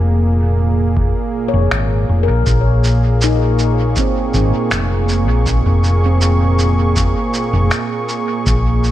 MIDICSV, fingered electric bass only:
0, 0, Header, 1, 2, 480
1, 0, Start_track
1, 0, Key_signature, -5, "minor"
1, 0, Tempo, 750000
1, 1579, Time_signature, 4, 2, 24, 8
1, 5705, End_track
2, 0, Start_track
2, 0, Title_t, "Fingered electric bass"
2, 0, Program_c, 0, 33
2, 0, Note_on_c, 0, 29, 77
2, 719, Note_off_c, 0, 29, 0
2, 983, Note_on_c, 0, 29, 84
2, 1085, Note_off_c, 0, 29, 0
2, 1099, Note_on_c, 0, 32, 89
2, 1311, Note_off_c, 0, 32, 0
2, 1339, Note_on_c, 0, 29, 77
2, 1447, Note_off_c, 0, 29, 0
2, 1461, Note_on_c, 0, 34, 81
2, 1565, Note_off_c, 0, 34, 0
2, 1579, Note_on_c, 0, 34, 94
2, 2517, Note_off_c, 0, 34, 0
2, 2778, Note_on_c, 0, 32, 88
2, 2887, Note_off_c, 0, 32, 0
2, 3018, Note_on_c, 0, 29, 92
2, 3381, Note_off_c, 0, 29, 0
2, 3381, Note_on_c, 0, 34, 84
2, 3592, Note_off_c, 0, 34, 0
2, 3621, Note_on_c, 0, 29, 84
2, 4558, Note_off_c, 0, 29, 0
2, 4821, Note_on_c, 0, 29, 87
2, 4924, Note_off_c, 0, 29, 0
2, 5418, Note_on_c, 0, 34, 99
2, 5705, Note_off_c, 0, 34, 0
2, 5705, End_track
0, 0, End_of_file